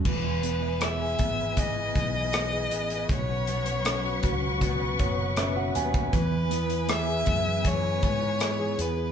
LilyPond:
<<
  \new Staff \with { instrumentName = "String section" } { \time 4/4 \key e \major \tempo 4 = 79 << { gis''1 | <fis'' cis'''>1 | gis''1 | } \\ { b'1~ | b'1~ | b'1 | } >> }
  \new Staff \with { instrumentName = "Violin" } { \time 4/4 \key e \major b'4 e''4 dis''2 | cis''2 r2 | b'4 e''4 cis''4. b'8 | }
  \new Staff \with { instrumentName = "Tine electric piano" } { \time 4/4 \key e \major r1 | r2 r8 cis''8 e''16 fis''16 gis''8 | r1 | }
  \new Staff \with { instrumentName = "Tine electric piano" } { \time 4/4 \key e \major e8 b8 gis'8 b4. gis'4 | b,8 fis8 cis'8 fis'4. cis'4 | e8 b8 gis'8 b4. gis'4 | }
  \new Staff \with { instrumentName = "Steel-string acoustic guitar" } { \time 4/4 \key e \major e16 e'16 b16 e'16 b16 gis'16 b16 e'16 e16 e'16 b16 e'16 b16 gis'16 b16 e'16 | b,16 cis'16 b16 cis'16 b16 fis'16 b16 cis'16 b,16 cis'16 b16 cis'16 b16 fis'16 b16 cis'16 | e16 e'16 b16 e'16 b16 gis'16 b16 e'16 e16 e'16 b16 e'16 b16 gis'16 b16 e'16 | }
  \new Staff \with { instrumentName = "Fretless electric bass" } { \clef bass \time 4/4 \key e \major e,,4. gis,,4 b,,4 a,,8 | b,,4. cis,4 fis,,4 dis,8 | e,4. fis,4 gis,4 e,8 | }
  \new DrumStaff \with { instrumentName = "Drums" } \drummode { \time 4/4 <cymc bd>8 hh8 <hh ss>8 <hh bd>8 <hh bd>8 <hh bd>8 <hh ss>8 hh16 hh16 | <hh bd>8 hh16 hh16 <hh ss>8 <hh bd>8 <hh bd>8 <hh bd>8 <hh ss>8 hh16 <hh bd>16 | <hh bd>8 hh16 hh16 <hh ss>8 <hh bd>8 <hh bd>8 <hh bd>8 <hh ss>8 hh8 | }
>>